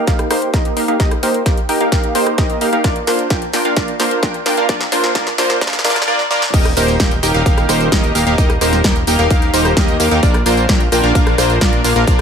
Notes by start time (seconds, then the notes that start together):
0.07 A#3 D#4 G4 A#4 F5, kick, snare, closed hi-hat
0.19 cross-stick, closed hi-hat
0.31 A#3 D#4 G4 A#4 C5, cross-stick, open hi-hat
0.42 closed hi-hat
0.54 A#3 D#4 G4 A#4 D#5, kick, snare, closed hi-hat
0.65 closed hi-hat
0.77 A#3 D#4 G4 A#4 F5, open hi-hat
0.88 A#3 D#4 G4 A#4 F5, closed hi-hat
1.00 A#3 D#4 G4 A#4 D#5, kick, snare, closed hi-hat
1.11 cross-stick, closed hi-hat
1.23 A#3 D#4 G4 A#4 C5, open hi-hat
1.34 closed hi-hat
1.46 A#3 D#4 G4 A#4 G5, kick, snare, closed hi-hat
1.57 closed hi-hat
1.69 A#3 D#4 G4 A#4 G5, open hi-hat
1.80 A#3 D#4 G4 A#4 F5, closed hi-hat
1.92 A#3 D#4 G4 A#4 F5, kick, snare, closed hi-hat
2.04 closed hi-hat
2.15 A#3 D#4 G4 A#4 C5, open hi-hat
2.27 cross-stick, closed hi-hat
2.38 A#3 D#4 G4 A#4 D#5, kick, snare, closed hi-hat
2.50 closed hi-hat
2.61 A#3 D#4 G4 A#4 F5, open hi-hat
2.73 A#3 D#4 G4 A#4 F5, closed hi-hat
2.84 A#3 D4 F4 A#4 D5, kick, snare, closed hi-hat
2.96 closed hi-hat
3.07 A#3 D4 F4 A#4 C5, snare, open hi-hat
3.19 closed hi-hat
3.30 A#3 D4 F4 A#4 G5, kick, snare, closed hi-hat
3.42 closed hi-hat
3.53 A#3 D4 F4 A#4 G5, snare, open hi-hat
3.65 A#3 D4 F4 A#4 F5, closed hi-hat
3.77 A#3 D4 A#4 D5, kick, snare, closed hi-hat
3.88 closed hi-hat
4.00 A#3 D4 F4 A#4 C5, snare, open hi-hat
4.11 closed hi-hat
4.23 A#3 D4 F4 A#4 G5, kick, snare, closed hi-hat
4.34 closed hi-hat
4.46 A#3 D4 F4 A#4 G5, snare, open hi-hat
4.57 A#3 D4 F4 A#4 F5, closed hi-hat
4.69 A#3 D4 F4 A#4 D5, kick, snare, closed hi-hat
4.81 snare, closed hi-hat
4.92 A#3 D4 F4 A#4 C5, snare, open hi-hat
5.04 snare, closed hi-hat
5.15 A#3 D4 F4 A#4 D5, kick, snare, closed hi-hat
5.27 snare, closed hi-hat
5.38 A#3 D4 F4 A#4 C5, snare, open hi-hat
5.50 snare, closed hi-hat
5.61 A#3 D4 F4 A#4 D5, kick, snare, closed hi-hat
5.67 snare
5.73 snare, closed hi-hat
5.79 snare
5.84 A#3 D4 F4 A#4 D5, snare, open hi-hat
5.90 snare
5.96 snare, closed hi-hat
6.02 snare
6.08 A#3 D4 F4 A#4 D5
6.19 snare
6.31 A#3 D4 F4 A#4 D5, snare
6.42 snare
6.54 D#1 A#3 D#4 G4 A#4 D#5, kick, closed hi-hat, crash, tambourine
6.65 cross-stick, closed hi-hat, tambourine
6.77 D#1 A#3 D#4 G4 A#4 C5, open hi-hat, tambourine
6.88 closed hi-hat, tambourine
7.00 D#1 A#3 D#4 G4 A#4 G5, kick, snare, closed hi-hat, tambourine
7.11 closed hi-hat, tambourine
7.23 D#1 A#3 D#4 G4 A#4 G5, open hi-hat, tambourine
7.34 D#1 A#3 D#4 G4 A#4 F5, closed hi-hat, tambourine
7.46 D#1 A#3 D#4 G4 A#4 F5, kick, closed hi-hat, tambourine
7.58 cross-stick, closed hi-hat, tambourine
7.69 D#1 A#3 D#4 G4 A#4 C5, cross-stick, open hi-hat, tambourine
7.81 closed hi-hat, tambourine
7.92 D#1 A#3 D#4 G4 A#4 D#5, kick, snare, closed hi-hat, tambourine
8.04 closed hi-hat, tambourine
8.15 D#1 A#3 D#4 G4 A#4 F5, open hi-hat, tambourine
8.26 D#1 A#3 D#4 G4 A#4 F5, closed hi-hat, tambourine
8.38 D#1 A#3 D#4 G4 A#4 D#5, kick, closed hi-hat, tambourine
8.50 cross-stick, closed hi-hat, tambourine
8.61 D#1 A#3 D#4 G4 A#4 C5, open hi-hat, tambourine
8.73 snare, closed hi-hat, tambourine
8.84 D#1 A#3 D#4 G4 A#4 G5, kick, snare, closed hi-hat, tambourine
8.96 closed hi-hat, tambourine
9.07 D#1 A#3 D#4 G4 A#4 G5, open hi-hat, tambourine
9.19 D#1 A#3 D#4 G4 A#4 F5, closed hi-hat, tambourine
9.30 D#1 A#3 D#4 G4 A#4 F5, kick, closed hi-hat, tambourine
9.42 closed hi-hat, tambourine
9.53 D#1 A#3 D#4 G4 A#4 C5, open hi-hat, tambourine
9.65 cross-stick, closed hi-hat, tambourine
9.77 D#2 A#3 D#4 G4 A#4 D#5, kick, snare, closed hi-hat, tambourine
9.88 closed hi-hat, tambourine
10.00 D#2 A#3 D#4 G4 A#4 F5, open hi-hat, tambourine
10.11 D#2 A#3 D#4 G4 A#4 F5, closed hi-hat, tambourine
10.23 A#1 A#3 D4 F4 A#4 D5, kick, closed hi-hat, tambourine
10.34 cross-stick, closed hi-hat, tambourine
10.46 A#1 A#3 D4 F4 A#4 C5, open hi-hat, tambourine
10.57 closed hi-hat, tambourine
10.69 A#1 A#3 D4 F4 A#4 G5, kick, snare, closed hi-hat, tambourine
10.80 closed hi-hat, tambourine
10.92 A#1 A#3 D4 F4 A#4 G5, open hi-hat, tambourine
11.03 A#1 A#3 D4 F4 A#4 F5, closed hi-hat, tambourine
11.15 A#1 A#3 D4 F4 A#4 F5, kick, closed hi-hat, tambourine
11.27 cross-stick, closed hi-hat, tambourine
11.38 A#1 A#3 D4 F4 A#4 C5, cross-stick, open hi-hat, tambourine
11.50 closed hi-hat, tambourine
11.61 A#1 A#3 D4 F4 A#4 D5, kick, snare, closed hi-hat, tambourine
11.73 closed hi-hat, tambourine
11.84 A#1 A#3 D4 F4 A#4 F5, open hi-hat, tambourine
11.96 A#1 A#3 D4 F4 A#4 F5, closed hi-hat, tambourine
12.07 A#1 D4 F4 A#4 D5, kick, closed hi-hat, tambourine